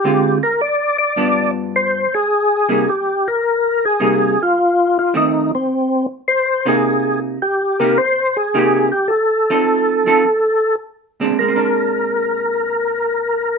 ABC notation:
X:1
M:4/4
L:1/8
Q:"Swing" 1/4=106
K:Bbmix
V:1 name="Tonewheel organ"
G B d d2 z c A- | A2 G B2 A2 F- | F F E C2 z c A- | A z G B c A2 G |
=A6 z2 | B8 |]
V:2 name="Hollow-body jazz guitar"
[D,A,CF] z3 [G,,F,=B,D]3 z | z [C,G,B,E] z4 [C,G,B,E] z | z2 [F,,E,=A,C] z4 [C,B,E]- | [C,B,E]2 z [C,B,EG] z2 [C,B,EG] z |
z [F,CE=A]2 [F,CEA] z3 [B,,_A,CD] | [B,,A,CD]8 |]